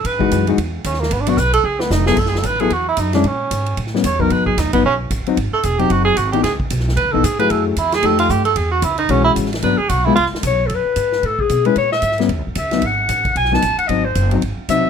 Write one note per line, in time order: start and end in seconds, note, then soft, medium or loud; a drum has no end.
0.05 0.30 G#2 medium
0.05 0.48 B4 loud
0.05 kick soft
0.05 ride medium
0.19 0.45 E3 medium
0.19 0.45 G#3 medium
0.19 0.45 D#4 medium
0.19 0.46 F#4 medium
0.19 kick medium
0.31 0.57 F#2 loud
0.31 kick soft
0.31 hi-hat pedal medium
0.31 ride medium
0.47 0.57 E3 medium
0.47 0.57 G#3 medium
0.47 0.58 D#4 medium
0.47 0.58 F#4 medium
0.47 ride soft
0.58 0.84 E2 medium
0.58 kick soft
0.58 ride medium
0.84 1.10 D#2 loud
0.84 1.02 C#4 medium
0.84 kick soft
0.84 hi-hat pedal medium
0.84 ride medium
0.94 snare soft
1.00 1.14 A#3 medium
1.00 snare soft
1.11 1.37 G#1 medium
1.11 1.22 B3 medium
1.11 kick soft
1.11 ride medium
1.20 1.30 D4 medium
1.26 1.37 F#3 medium
1.26 1.37 B3 medium
1.26 1.38 D4 medium
1.26 1.40 F#4 medium
1.26 ride medium
1.37 1.63 B1 loud
1.37 1.53 B4 loud
1.37 kick soft
1.37 hi-hat pedal medium
1.53 1.66 A4 loud
1.53 ride medium
1.64 1.90 C#2 medium
1.64 1.82 G#4 loud
1.80 1.93 B3 medium
1.80 snare medium
1.90 2.16 F1 loud
1.90 2.06 D#4 medium
1.90 snare medium
1.90 hi-hat pedal medium
2.06 2.17 F#3 medium
2.06 2.17 B3 medium
2.06 2.17 E4 medium
2.06 2.20 G#4 loud
2.06 2.17 A4 medium
2.06 snare medium
2.17 2.43 F#1 medium
2.17 2.30 A4 medium
2.17 kick medium
2.17 crash medium
2.26 2.40 G#4 medium
2.26 snare soft
2.35 2.48 A4 medium
2.35 snare soft
2.43 2.70 A1 medium
2.43 2.62 B4 loud
2.43 kick soft
2.43 hi-hat pedal medium
2.43 ride medium
2.60 2.70 F#3 medium
2.60 2.70 B3 medium
2.60 2.71 E4 medium
2.60 2.74 G#4 loud
2.60 2.71 A4 medium
2.60 ride soft
2.70 2.96 E2 medium
2.70 2.88 F#4 medium
2.70 kick soft
2.70 ride medium
2.88 3.01 E4 loud
2.97 3.23 F#2 medium
2.97 3.14 D#4 medium
2.97 kick soft
2.97 hi-hat pedal medium
2.97 ride medium
3.13 3.24 G#3 medium
3.13 3.24 C#4 medium
3.13 3.28 D4 medium
3.13 3.24 E4 medium
3.13 snare soft
3.13 ride soft
3.24 3.50 A#2 medium
3.24 3.79 C#4 medium
3.24 kick soft
3.24 ride medium
3.51 3.77 G#2 medium
3.51 kick soft
3.51 hi-hat pedal medium
3.51 ride medium
3.66 ride soft
3.77 4.03 A2 medium
3.77 kick soft
3.77 ride medium
3.87 snare soft
3.94 4.03 G3 medium
3.94 4.04 B3 medium
3.94 4.04 C#4 medium
3.94 snare soft
4.04 4.30 E2 loud
4.04 4.22 C#5 medium
4.04 kick soft
4.04 hi-hat pedal medium
4.04 ride medium
4.19 4.55 F#3 medium
4.19 4.55 B3 medium
4.19 4.55 D#4 medium
4.19 4.34 A#4 medium
4.19 kick soft
4.30 4.57 G#2 medium
4.30 4.46 B4 loud
4.30 kick soft
4.30 ride medium
4.46 4.61 G#4 medium
4.46 kick medium
4.57 4.67 D#2 loud
4.57 4.72 D#4 medium
4.57 kick soft
4.57 snare soft
4.57 hi-hat pedal medium
4.57 ride medium
4.66 4.74 B1 medium
4.73 4.83 G#1 medium
4.73 4.83 F#3 medium
4.73 4.83 B3 loud
4.73 4.83 B3 medium
4.73 4.84 D#4 medium
4.73 kick medium
4.73 ride medium
4.84 5.10 B1 medium
4.84 4.95 C#4 medium
4.84 kick soft
5.11 5.25 A1 loud
5.11 kick soft
5.11 hi-hat pedal medium
5.11 ride medium
5.26 5.37 F#3 medium
5.26 5.37 C4 medium
5.26 5.37 D#4 loud
5.26 muted upright bass stroke soft
5.26 ride soft
5.37 5.52 G#1 medium
5.37 kick soft
5.37 ride medium
5.53 5.66 A4 loud
5.53 muted upright bass stroke soft
5.63 5.90 E1 loud
5.63 5.81 G#4 medium
5.63 kick soft
5.63 hi-hat pedal medium
5.63 ride medium
5.79 6.15 F#3 medium
5.79 6.15 C4 medium
5.79 6.15 D#4 medium
5.79 5.93 G4 loud
5.79 ride soft
5.90 6.16 F#1 medium
5.90 6.04 F#4 medium
5.90 kick soft
5.90 ride medium
6.05 6.19 G#4 loud
6.17 6.43 G#1 medium
6.17 6.32 F#4 medium
6.17 kick soft
6.17 hi-hat pedal medium
6.17 ride medium
6.32 6.43 E3 medium
6.32 6.43 B3 medium
6.32 6.43 D#4 medium
6.32 6.43 G4 medium
6.32 ride soft
6.43 6.70 C#2 medium
6.43 6.53 G#4 medium
6.43 kick soft
6.43 snare soft
6.43 ride medium
6.60 kick medium
6.70 6.96 B1 medium
6.70 kick soft
6.70 hi-hat pedal medium
6.70 ride medium
6.80 snare soft
6.88 snare soft
6.97 7.07 D#2 medium
6.97 7.13 B4 medium
6.97 kick soft
6.97 ride medium
7.05 7.14 C#2 soft
7.12 7.23 B1 medium
7.12 7.23 E3 medium
7.12 7.23 B3 medium
7.12 7.23 D#4 medium
7.12 7.26 A4 loud
7.23 7.49 G#2 loud
7.23 7.39 G#4 medium
7.23 kick soft
7.23 hi-hat pedal medium
7.23 ride medium
7.39 7.75 F#3 medium
7.39 7.75 A3 medium
7.39 7.75 E4 medium
7.39 7.75 G#4 medium
7.39 7.52 B4 loud
7.39 ride soft
7.50 7.76 F#2 medium
7.50 7.66 A4 medium
7.50 kick soft
7.50 ride medium
7.66 7.80 C#4 medium
7.76 8.02 E2 medium
7.76 7.96 E4 loud
7.76 kick soft
7.76 hi-hat pedal medium
7.76 ride medium
7.92 8.07 G#4 loud
7.92 snare medium
7.92 ride medium
8.03 8.29 F2 medium
8.03 8.43 F3 medium
8.03 8.43 A3 medium
8.03 8.43 D#4 medium
8.03 8.43 G4 medium
8.03 8.19 A4 loud
8.03 kick soft
8.03 ride medium
8.19 8.32 F4 loud
8.19 ride medium
8.29 8.55 G2 loud
8.29 8.44 G4 medium
8.29 kick soft
8.29 hi-hat pedal medium
8.45 8.58 A4 loud
8.45 ride medium
8.56 8.82 E2 medium
8.56 8.71 G#4 medium
8.56 kick soft
8.56 ride medium
8.71 8.85 F#4 loud
8.82 9.08 C#2 loud
8.82 8.98 E4 loud
8.82 kick soft
8.82 hi-hat pedal medium
8.82 ride medium
8.98 9.12 D#4 loud
8.98 ride medium
9.09 9.35 B1 loud
9.09 9.49 E3 medium
9.09 9.49 G#3 medium
9.09 9.49 C#4 medium
9.09 9.23 C#4 loud
9.09 9.50 F#4 medium
9.09 kick soft
9.09 ride medium
9.24 9.31 E4 loud
9.36 9.62 A1 loud
9.36 kick soft
9.36 hi-hat pedal medium
9.36 ride medium
9.45 snare soft
9.53 snare medium
9.53 ride medium
9.62 9.78 G#1 medium
9.62 9.77 F#3 medium
9.62 9.78 B3 medium
9.62 9.78 D4 medium
9.62 9.79 B4 loud
9.62 kick soft
9.62 ride medium
9.78 9.91 G#4 loud
9.78 muted upright bass stroke soft
9.89 10.15 B1 loud
9.89 10.06 F#4 loud
9.89 kick soft
9.89 hi-hat pedal medium
9.89 ride medium
10.05 10.16 G#3 medium
10.05 10.16 B3 medium
10.05 10.15 E4 loud
10.05 10.16 F4 loud
10.16 10.31 C#2 medium
10.16 10.25 F4 loud
10.16 kick soft
10.16 ride medium
10.26 snare soft
10.33 muted upright bass stroke soft
10.33 snare medium
10.43 10.69 B1 loud
10.43 kick soft
10.43 hi-hat pedal medium
10.43 ride loud
10.47 10.68 C#5 loud
10.66 10.85 F#2 medium
10.66 10.76 A4 medium
10.66 kick soft
10.66 ride medium
10.75 11.27 B4 medium
10.85 muted upright bass stroke soft
10.96 11.22 G#2 medium
10.96 kick soft
10.96 hi-hat pedal medium
10.96 ride medium
11.12 snare soft
11.23 11.49 A2 medium
11.23 11.42 A4 loud
11.23 kick soft
11.23 ride medium
11.39 11.67 G#4 medium
11.39 kick soft
11.49 11.75 B2 medium
11.49 kick soft
11.49 hi-hat pedal medium
11.49 ride medium
11.65 11.75 G#3 medium
11.65 11.75 C#4 medium
11.65 11.76 E4 medium
11.65 11.76 B4 medium
11.65 ride soft
11.76 12.01 A#2 medium
11.76 11.92 C#5 loud
11.76 kick soft
11.76 ride medium
11.92 12.17 E5 loud
11.92 snare soft
12.02 12.28 G#2 medium
12.02 kick soft
12.02 hi-hat pedal medium
12.02 ride medium
12.11 snare soft
12.18 12.28 G3 medium
12.18 12.29 B3 medium
12.18 12.29 C#4 medium
12.18 snare soft
12.18 ride soft
12.29 12.38 E2 medium
12.29 kick soft
12.29 ride medium
12.38 12.46 C#2 soft
12.47 12.55 A1 medium
12.55 12.82 C#2 medium
12.55 12.87 E5 medium
12.55 kick soft
12.55 hi-hat pedal medium
12.55 ride medium
12.71 12.82 F#3 medium
12.71 12.82 B3 medium
12.71 12.82 D#4 medium
12.71 snare medium
12.71 ride soft
12.82 13.08 G#1 medium
12.82 13.36 F#5 loud
12.82 kick soft
12.82 ride medium
13.09 13.35 A1 medium
13.09 kick soft
13.09 hi-hat pedal medium
13.09 ride medium
13.25 kick medium
13.25 ride soft
13.35 13.61 B1 medium
13.35 13.56 G#5 loud
13.35 kick soft
13.35 ride medium
13.45 snare soft
13.52 13.61 F#3 medium
13.52 13.62 B3 medium
13.52 13.62 D#4 medium
13.52 13.78 A5 loud
13.52 snare soft
13.62 13.77 A1 medium
13.62 kick soft
13.62 hi-hat pedal soft
13.62 ride medium
13.78 13.89 F#5 medium
13.78 muted upright bass stroke soft
13.78 ride soft
13.87 14.15 G#1 medium
13.87 14.03 F#3 medium
13.87 14.04 C4 medium
13.87 14.04 D#4 medium
13.87 14.06 D#5 medium
13.87 kick soft
13.87 ride medium
14.05 14.31 C5 medium
14.15 14.41 F#1 loud
14.15 kick soft
14.15 hi-hat pedal medium
14.15 ride medium
14.31 14.41 F#3 medium
14.31 14.42 C4 medium
14.31 14.42 D#4 medium
14.31 ride soft
14.42 14.56 G#1 medium
14.42 kick soft
14.42 ride medium
14.58 muted upright bass stroke soft
14.69 14.83 C2 medium
14.69 14.90 F#3 medium
14.69 14.90 C4 medium
14.69 14.90 D#4 medium
14.69 14.90 E5 loud
14.69 kick soft
14.69 hi-hat pedal medium
14.69 ride medium
14.84 muted upright bass stroke soft